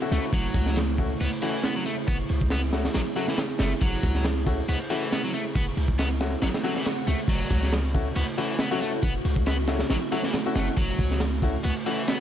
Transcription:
Already playing: ambient pad C#3 A3 E4 F#4
0.02 grand piano A3 C#4 E4 F#4, ride
0.11 808-style bass C#2, grand piano A3 C#4 E4 F#4, overdriven electric guitar A3, ride
0.33 808-style bass F#1, overdriven electric guitar F#3, ambient pad G#4, kick, ride
0.54 808-style bass C#2, kick, ride
0.66 snare
0.76 snare, ride
0.89 ride
0.98 grand piano A3 C#4 E4 F#4, kick, ride
1.20 808-style bass C#2, overdriven electric guitar B3, ride
1.33 ride
1.42 overdriven electric guitar E3, grand piano A3 C#4 E4 F#4, ride
1.54 ride
1.64 overdriven electric guitar B3, snare, ride
1.76 overdriven electric guitar F#3
1.86 overdriven electric guitar A3, ride
2.07 808-style bass F#1, overdriven electric guitar B3, kick, ride
2.29 808-style bass C#2, ride
2.41 kick
2.50 overdriven electric guitar B3, snare, ride
2.62 ride
2.73 grand piano A3 C#4 E4 F#4, snare, ride
2.85 snare, ride
2.94 808-style bass A1, overdriven electric guitar F#3, snare, ride
3.06 ride
3.16 overdriven electric guitar F#3, grand piano A3 C#4 E4 F#4, ride
3.28 overdriven electric guitar E3, snare
3.37 snare, ride
3.49 ride
3.59 808-style bass F#1, overdriven electric guitar A3, snare, ride
3.72 ride
3.81 808-style bass F#1, overdriven electric guitar F#3, kick, ride
4.03 808-style bass C#2, kick, ride
4.15 snare
4.25 snare, ride
4.37 ride
4.46 grand piano A3 C#4 E4 F#4, kick, ride
4.68 808-style bass C#2, overdriven electric guitar B3, ride
4.80 ride
4.90 overdriven electric guitar E3, grand piano A3 C#4 E4 F#4, ride
5.03 ride
5.12 overdriven electric guitar B3, snare, ride
5.24 overdriven electric guitar F#3
5.33 overdriven electric guitar A3, ride
5.55 808-style bass F#1, overdriven electric guitar B3, kick, ride
5.77 808-style bass C#2, ride
5.88 kick
5.99 overdriven electric guitar B3, snare, ride
6.11 ride
6.20 grand piano A3 C#4 E4 F#4, snare, ride
6.32 ride
6.42 808-style bass A1, overdriven electric guitar F#3, snare, ride, swell
6.54 snare, ride
6.64 overdriven electric guitar F#3, grand piano A3 C#4 E4 F#4, ride
6.76 overdriven electric guitar E3, snare
6.85 snare, ride
6.98 ride
7.07 808-style bass C#2, overdriven electric guitar A3, ride
7.28 808-style bass F#1, ambient pad C#3 A3 E4 F#4, overdriven electric guitar F#3, kick, crash, ride
7.51 808-style bass C#2, kick, ride
7.63 snare
7.73 snare, ride
7.84 ride
7.94 grand piano A3 C#4 E4 F#4, kick, ride
8.15 808-style bass C#2, overdriven electric guitar B3, ride
8.28 ride
8.38 overdriven electric guitar E3, grand piano A3 C#4 E4 F#4, ride
8.50 ride
8.59 overdriven electric guitar B3, snare, ride
8.71 overdriven electric guitar F#3, grand piano A3 C#4 E4 F#4
8.81 grand piano A3 C#4 E4 F#4, overdriven electric guitar A3, ride
9.03 808-style bass F#1, overdriven electric guitar B3, kick, ride
9.25 808-style bass C#2, ride
9.36 kick
9.46 overdriven electric guitar B3, snare, ride
9.60 ride
9.67 grand piano A3 C#4 E4 F#4, snare, ride
9.79 snare, ride
9.90 808-style bass A1, overdriven electric guitar F#3, snare, ride
10.02 ride
10.12 overdriven electric guitar F#3, grand piano A3 C#4 E4 F#4, ride
10.23 overdriven electric guitar E3, snare
10.33 snare, ride
10.46 grand piano A3 C#4 E4 F#4, ride
10.55 808-style bass F#1, overdriven electric guitar A3, grand piano A3 C#4 E4 F#4, snare, ride
10.68 ride
10.77 808-style bass F#1, overdriven electric guitar F#3, kick, ride
10.99 808-style bass C#2, kick, ride
11.11 snare
11.20 snare, ride
11.33 ride
11.42 grand piano A3 C#4 E4 F#4, kick, ride
11.64 808-style bass C#2, overdriven electric guitar B3, ride
11.76 ride
11.86 overdriven electric guitar E3, grand piano A3 C#4 E4 F#4, ride
11.99 ride
12.08 overdriven electric guitar B3, snare, ride

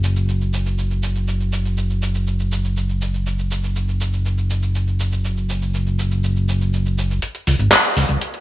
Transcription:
Already playing: analog synth bass F#1
0.04 shaker
0.16 shaker
0.29 shaker
0.41 shaker
0.54 shaker
0.66 shaker
0.78 shaker
0.91 shaker
1.03 shaker
1.16 shaker
1.28 shaker
1.40 shaker
1.53 shaker
1.65 shaker
1.78 shaker
1.90 shaker
2.02 shaker
2.15 shaker
2.27 shaker
2.40 shaker
2.52 shaker
2.64 shaker
2.77 shaker
2.89 shaker
3.02 shaker
3.14 shaker
3.26 shaker
3.39 shaker
3.51 shaker
3.64 shaker
3.76 shaker
3.89 shaker
4.01 shaker
4.13 shaker
4.26 shaker
4.38 shaker
4.50 shaker
4.63 shaker
4.75 shaker
4.88 shaker
5.00 shaker
5.12 shaker
5.25 shaker
5.37 shaker
5.50 shaker
5.62 shaker
5.74 shaker
5.87 shaker
5.99 shaker
6.12 shaker
6.24 shaker
6.36 shaker
6.49 shaker
6.61 shaker
6.73 shaker
6.86 shaker
6.98 shaker
7.11 shaker
7.22 closed hi-hat
7.35 closed hi-hat
7.47 analog synth bass C#2, open hi-hat
7.59 analog synth bass G#1, closed hi-hat
7.72 clap, closed hi-hat
7.84 closed hi-hat
7.97 analog synth bass C#2, open hi-hat
8.09 analog synth bass C#2, closed hi-hat
8.21 closed hi-hat
8.34 closed hi-hat

